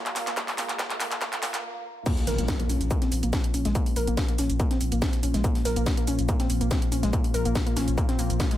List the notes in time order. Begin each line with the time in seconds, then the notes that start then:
Already playing: A#2 F3 F4 A#4 F5 A#5, riser
0.06 clap, closed hi-hat
0.16 A#3, clap, open hi-hat, shaker
0.27 A#3, snare, clap, closed hi-hat, shaker
0.37 A#3, kick, clap, closed hi-hat, shaker
0.48 clap, open hi-hat
0.58 A#3, clap, open hi-hat, shaker
0.69 clap, closed hi-hat, shaker
0.79 A#3, kick, snare, clap, closed hi-hat, shaker
0.90 clap, closed hi-hat
1.00 A#3, clap, open hi-hat, shaker
1.11 snare, clap, closed hi-hat, shaker
1.21 A#3, kick, snare, clap, closed hi-hat, shaker
1.33 clap, closed hi-hat, shaker
1.43 A#3, kick, snare, clap, open hi-hat, shaker
1.54 snare, clap, closed hi-hat, shaker
2.06 A#2 F3 A#3, kick, closed hi-hat, crash, impact, shaker
2.17 snare, open hi-hat
2.27 A#1 A#4, snare, open hi-hat, shaker
2.38 A#1 A#3, closed hi-hat, shaker
2.48 kick, snare, closed hi-hat, shaker
2.60 A#3, closed hi-hat
2.69 A#1 C#4, open hi-hat, shaker
2.81 A#1, closed hi-hat, shaker
2.91 A#3, kick, closed hi-hat, shaker
3.02 C4, snare, closed hi-hat
3.12 A#1, open hi-hat, shaker
3.23 A#1 A#3, closed hi-hat, shaker
3.33 C4, kick, snare, closed hi-hat, shaker
3.44 closed hi-hat
3.54 A#1 C#4, open hi-hat, shaker
3.65 A#1 G#3, snare, closed hi-hat, shaker
3.75 A#3, kick, closed hi-hat, shaker
3.86 open hi-hat
3.96 A#1 A#4, open hi-hat, shaker
4.07 A#1 A#3, closed hi-hat, shaker
4.17 kick, snare, closed hi-hat, shaker
4.29 A#3, closed hi-hat
4.38 A#1 C#4, snare, open hi-hat, shaker
4.50 A#1, closed hi-hat, shaker
4.60 A#3, kick, closed hi-hat, shaker
4.71 C4, snare, closed hi-hat
4.81 A#1, open hi-hat, shaker
4.92 A#1 A#3, closed hi-hat, shaker
5.02 C4, kick, snare, closed hi-hat, shaker
5.13 snare, closed hi-hat
5.23 A#1 C#4, open hi-hat, shaker
5.34 A#1 G#3, snare, closed hi-hat, shaker
5.44 A#3, kick, closed hi-hat, shaker
5.55 snare, open hi-hat
5.65 A#1 A#4, snare, open hi-hat, shaker
5.76 A#1 A#3, closed hi-hat, shaker
5.86 kick, snare, closed hi-hat, shaker
5.97 A#3, closed hi-hat
6.07 A#1 C#4, open hi-hat, shaker
6.19 A#1, closed hi-hat, shaker
6.29 A#3, kick, closed hi-hat, shaker
6.40 C4, snare, closed hi-hat
6.50 A#1, open hi-hat, shaker
6.61 A#1 A#3, closed hi-hat, shaker
6.71 C4, kick, snare, closed hi-hat, shaker
6.82 closed hi-hat
6.92 A#1 C#4, open hi-hat, shaker
7.03 A#1 G#3, snare, closed hi-hat, shaker
7.13 A#3, kick, closed hi-hat, shaker
7.24 open hi-hat
7.34 A#1 A#4, open hi-hat, shaker
7.45 A#1 A#3, closed hi-hat, shaker
7.55 kick, snare, closed hi-hat, shaker
7.66 A#3, closed hi-hat
7.76 A#1 C#4, snare, open hi-hat, shaker
7.88 A#1, closed hi-hat, shaker
7.97 A#3, kick, closed hi-hat, shaker
8.09 C4, snare, closed hi-hat
8.19 A#1 A#3, open hi-hat, shaker
8.30 A#1, closed hi-hat, shaker
8.40 A#3, kick, snare, closed hi-hat, shaker
8.51 G#3, snare, closed hi-hat